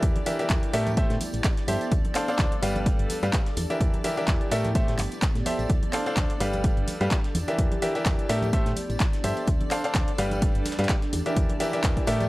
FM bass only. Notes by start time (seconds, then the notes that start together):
0.03 E2
0.50 E2
0.73 A2
1.10 A2
1.34 A1
1.68 G2
1.92 D2
2.39 D2
2.63 G1
2.99 G1
3.23 G2
3.57 E2
3.81 E2
4.28 E2
4.51 A2
4.88 A2
4.99 G1
5.35 A2
5.59 A1
5.70 D2
6.17 D2
6.40 G1
6.77 G1
7.01 G2
7.35 E2
7.59 E2
8.06 E2
8.29 A2
8.66 A2
8.90 A1
9.24 G2
9.48 D2
9.95 D2
10.18 G1
10.55 G1
10.79 G2
11.13 E2
11.37 E2
11.84 E2
12.07 A2